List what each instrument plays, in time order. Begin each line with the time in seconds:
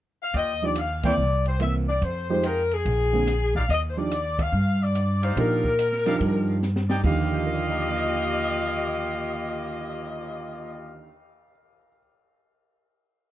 0.23 saxophone section F5
0.34 upright bass D#2, trumpet section F4 D5 D#5 G5, saxophone section D#5, kick, ride
0.62 grand piano F3 D4 D#4 G4, saxophone section D5
0.75 saxophone section F5, hi-hat pedal, ride
1.03 grand piano E3 A#3 C4 E4, trumpet section E4 A#4 C5 G5, saxophone section D5, kick, ride
1.18 upright bass C2
1.46 saxophone section C5, ride
1.59 grand piano E3 A#3 C4 A#4, saxophone section E5, hi-hat pedal, ride
1.89 saxophone section D5
2.01 upright bass F2, saxophone section C5, kick, ride
2.29 grand piano F3 G#3 D#4 G4, saxophone section C5
2.43 trumpet section F4 G#4 D#5 G5, saxophone section A#4, hi-hat pedal, ride
2.71 saxophone section G#4, ride
2.85 upright bass A#1, kick, ride
3.13 grand piano D3 A#3 C4 G#4
3.27 snare, hi-hat pedal, ride
3.55 trumpet section D#4 G4 D5 F5, saxophone section F5, kick
3.69 upright bass D#2, saxophone section D#5, kick, ride
3.90 saxophone section C5
3.97 grand piano F3 D4 D#4 G4, saxophone section D5
4.11 hi-hat pedal, ride
4.39 saxophone section F5, kick, ride
4.52 upright bass G2
4.83 saxophone section D5
4.95 hi-hat pedal, ride
5.21 trumpet section D#4 G4 D5 F5, saxophone section C5, ride
5.36 upright bass A#2, grand piano F3 D4 D#4 G4, saxophone section A#4, kick, ride
5.64 kick
5.79 hi-hat pedal, ride
5.92 snare
6.05 grand piano F3 D4 D#4 G4, trumpet section D#4 G4 D5 F5, snare, ride
6.20 upright bass G2, kick, ride
6.63 snare, hi-hat pedal
6.76 snare
6.90 trumpet section D#4 G4 D5 G5, snare
7.03 grand piano D#2 D3 D#3 F3 G4, upright bass D#2, saxophone section A#3 F4 G4 D#5, trumpet section G4 D#5 F5, kick, crash
7.31 cymbal swell
7.46 grand piano A#4
7.53 grand piano D5
7.61 grand piano F5
7.71 grand piano A#5
7.81 grand piano D6
7.91 grand piano F6
8.03 grand piano A#6